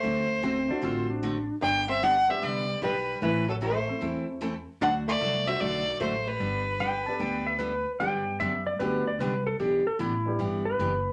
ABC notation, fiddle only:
X:1
M:4/4
L:1/8
Q:"Swing" 1/4=151
K:G
V:1 name="Fiddle"
c4- c z3 | g e f e d2 B2 | B A c2 z4 | f d2 e d2 c B- |
B6- B z | z8 | z8 |]